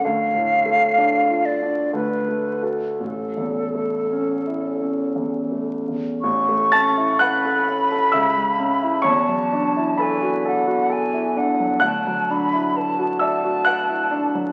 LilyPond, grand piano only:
\new Staff \with { instrumentName = "Grand piano" } { \time 3/4 \key a \major \tempo 4 = 64 << { r2. | r2. | r8 <a'' a'''>8 <fis'' fis'''>4 <e'' e'''>4 | <cis'' cis'''>4 <b' b''>4. r8 |
<fis'' fis'''>4. <e'' e'''>8 <fis'' fis'''>4 | } \\ { \tuplet 3/2 { d,8 a,8 a8 d'8 f'8 d'8 d,8 a8 <fis' a'>8 } | \tuplet 3/2 { a,,8 e,8 a8 cis'8 e'8 cis'8 e,8 a8 e,8 } | a,,16 a16 cis'16 e'16 b'16 a'16 cis''16 a'16 cis,16 gis16 cis'16 e'16 | e,16 fis16 d'16 e'16 a'16 fis'16 a'16 fis'16 a'16 e'16 d'16 fis16 |
d,16 fis16 d'16 e'16 b'16 fis'16 d''16 fis'16 b'16 e'16 d'16 fis16 | } >> }